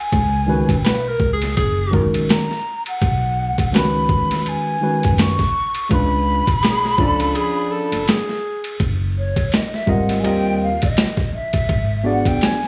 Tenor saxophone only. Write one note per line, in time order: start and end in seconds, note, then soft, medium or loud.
0.84 1.10 B4 medium
1.08 1.33 A#4 loud
1.33 1.55 G#4 medium
1.57 2.10 G#4 medium
6.63 7.00 G#4 medium
6.99 7.37 A4 loud
7.35 7.73 G#4 loud
7.71 8.10 A4 medium
8.08 8.80 G#4 medium